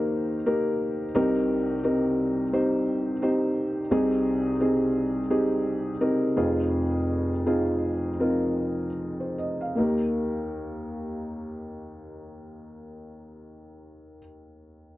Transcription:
felt piano
Already playing: D#2 D#3 A#3 D#4 G4 A#4 C5
0.46 A#3 D#4 G4 A#4
1.15 C2 C3 C4 D#4 G4 A#4
1.84 C4 D#4 G4 A#4
2.53 C4 D#4 G4 C5
3.22 C4 D#4 G4 C5
3.91 C2 C3 C4 D#4 G4 G#4
4.60 C4 D#4 G4 G#4
5.30 C4 D#4 G4 G#4
6.01 C4 D#4 G4 A#4
6.36 F1 F2 C4 D#4 F4 G#4
7.46 C4 D#4 F4 G#4
8.20 C4 D#4 F4 A#4
9.20 C5
9.38 D#5
9.61 F5
9.75 D#2 A#3 D#4 G4
9.80 A#4

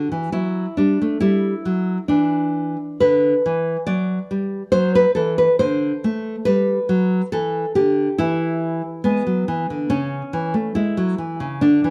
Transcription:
nylon-string guitar
Already playing: D3 F#4
0.12 E3
0.32 F#3 E4
0.77 G3 D4
1.02 A3
1.20 G3 E4
1.65 F#3
2.08 E3 D4
3.00 D3 B4
3.46 E3
3.87 F#3 D5
4.31 G3
4.72 F#3 C5
4.95 B4
5.15 E3 A4
5.38 B4
5.59 D3 C5
6.04 A3
6.45 G3 B4
6.89 F#3
7.32 E3 A4
7.75 D3 G4
8.18 E3 E4
9.04 G#3 B3
9.27 F#3
9.48 E3
9.70 D3
9.90 C#3 C#4
10.33 E3
10.54 A3
10.75 G#3 E4
10.97 F#3
11.18 E3
11.40 C#3
11.61 D3 D4
11.84 E3

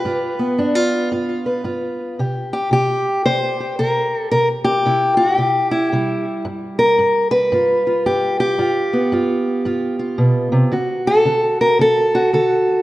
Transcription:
steel-string acoustic guitar
Already playing: B4
0.05 G2 F4
0.39 B3
0.58 G2 D4
0.75 F4
1.12 G2 F4
1.46 B4
1.64 G2 F4
2.19 C3 G4
2.53 G4
2.71 C3 G4
3.26 C3 C5
3.60 G4
3.79 C3 A#4
4.18 A4
4.31 C3 A#4
4.64 G4
4.86 C3 E4
5.17 F#4
5.37 C3 G4
5.71 E4
5.92 C3 G3
6.45 G2
6.79 A#4
6.99 G2
7.31 B4
7.52 G2 F4
7.87 F4
8.06 G2 G4
8.40 G4
8.58 G2 F4
8.93 B3
9.12 G2 F4
9.65 G2 F4
9.99 F4
10.18 B2
10.52 C3
10.72 D3 F#4
11.07 A4
11.25 D3 F#4
11.61 A#4
11.79 D3 A4
12.15 F#4
12.33 D3 A4

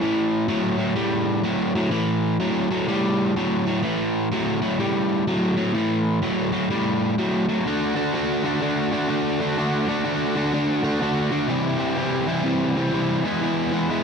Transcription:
overdriven electric guitar
0.02 A2 E3
0.48 A2 F#3
0.77 A2 F#3
0.95 A2 G3
1.43 A2 F#3
1.75 A2 F#3
1.91 A2 E3
2.40 A2 F#3
2.70 A2 F#3
2.88 A2 G3
3.36 A2 F#3
3.66 A2 F#3
3.83 A2 E3
4.33 A2 F#3
4.62 A2 F#3
4.79 A2 G3
5.27 A2 F#3
5.56 A2 F#3
5.74 A2 E3
6.22 A2 F#3
6.52 A2 F#3
6.70 A2 G3
7.18 A2 F#3
7.48 A2 F#3
7.66 D3 A3 D4 F#4
7.95 D3 A3 D4 F#4
8.14 D3 A3 D4 F#4
8.43 D3 A3 D4 F#4
8.61 D3 A3 D4 F#4
8.91 D3 A3 D4 F#4
9.09 D3 A3 D4 F#4
9.39 D3 A3 D4 F#4
9.58 D3 A3 D4 F#4
9.87 D3 A3 D4 F#4
10.04 D3 A3 D4 F#4
10.35 D3 A3 D4 F#4
10.53 D3 A3 D4 F#4
10.83 D3 A3 D4 F#4
11.01 D3 A3 D4 F#4
11.31 D3 A3 D4 F#4
11.48 C3 E3 G3 C4 E4
11.78 C3 E3 G3 C4 E4
11.97 C3 E3 G3 C4 E4
12.27 C3 E3 G3 C4 E4
12.44 C3 E3 G3 C4 E4
12.76 C3 E3 G3 C4 E4
12.93 C3 E3 G3 C4 E4
13.24 E3 G#3 B3 E4
13.42 E3 G#3 B3 E4
13.72 E3 G#3 B3 E4
13.90 E3 G#3 B3 E4

